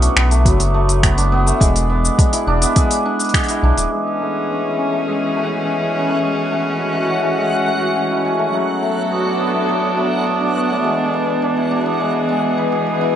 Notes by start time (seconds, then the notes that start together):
Already playing: F#3 A3 B3 E4
0.02 D4, open hi-hat, shaker
0.16 B1 B3, finger snap
0.31 A3, open hi-hat, shaker
0.45 F#1 F#3, kick, open hi-hat, shaker
0.60 open hi-hat, shaker
0.74 A3
0.89 open hi-hat, shaker
1.03 B3, finger snap, kick, open hi-hat, shaker
1.17 D4, open hi-hat, shaker
1.32 B3
1.46 A3, shaker
1.60 E1 G#3, kick, open hi-hat, shaker
1.76 open hi-hat, shaker
1.90 B3
2.05 shaker
2.18 D4, kick, open hi-hat, shaker
2.33 E4, open hi-hat, shaker
2.47 E1 D4
2.62 B3, open hi-hat, shaker
2.76 G#3, kick, open hi-hat, shaker
2.91 open hi-hat, shaker
3.05 D4
3.19 open hi-hat, shaker
3.24 open hi-hat
3.29 open hi-hat
3.34 G#4, finger snap, kick, open hi-hat, shaker
3.39 open hi-hat
3.44 open hi-hat
3.48 E4, open hi-hat, shaker
3.63 B1 D4
3.77 D1 D4, open hi-hat, shaker
3.92 E3 G#3 F#4 F#5
4.04 C#4
4.21 A3 G#4
4.50 C#4
4.64 E4
4.78 C#4
4.92 A3
5.07 G#3
5.36 A3
5.65 C#4
5.79 E4
5.94 C#4
6.08 A3
6.22 G#3
6.51 A3
6.79 C#4
6.94 E4
7.09 C#4
7.23 A3
7.38 G#3
7.67 A3
7.96 C#4
8.11 E4
8.25 C#4
8.39 A3
8.54 F#3
8.70 B3
8.78 A4
8.82 A3
9.12 B3
9.18 D4
9.26 D4
9.40 B3
9.54 A3
9.69 F#3
9.97 A3
10.27 B3
10.41 D4
10.55 B3
10.70 A3
10.84 E3 G#3
11.14 B3
11.42 D4
11.50 G#4
11.57 E4
11.71 D4
11.86 B3
12.00 G#3
12.29 G#3
12.58 B4
12.72 G#4
12.86 B3
13.01 E4